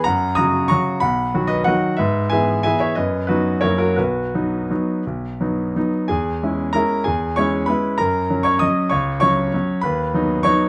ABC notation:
X:1
M:3/4
L:1/8
Q:1/4=188
K:B
V:1 name="Grand piano"
[fa]2 [ad']2 [ac']2 | [fb]3 [Bd] [df]2 | [Be]2 [eg]2 [eg] [ce] | [Bd]2 [FB]2 [Ac] [FA] |
[FB]6- | [FB]4- [FB] z | [Gg]4 [Aa]2 | [Gg]2 [cc']2 [Bb]2 |
[Aa]3 [cc'] [dd']2 | [cc']2 [cc']4 | [Bb]4 [cc']2 |]
V:2 name="Grand piano" clef=bass
F,,2 [C,F,F]2 [C,F,F]2 | B,,,2 [D,F,F]2 [D,F,F]2 | G,,2 [E,B,G]2 [E,B,G]2 | F,,2 [F,B,D]2 [F,,F,A,E]2 |
B,,,2 [F,B,D]2 [F,B,D]2 | B,,,2 [F,B,D]2 [F,B,D]2 | E,,2 [G,CE]2 [G,CE]2 | E,,2 [G,CE]2 [G,CE]2 |
F,,2 [F,C]2 [F,C]2 | C,,2 [F,C]2 [F,C]2 | D,,2 [F,B,D]2 [F,B,D]2 |]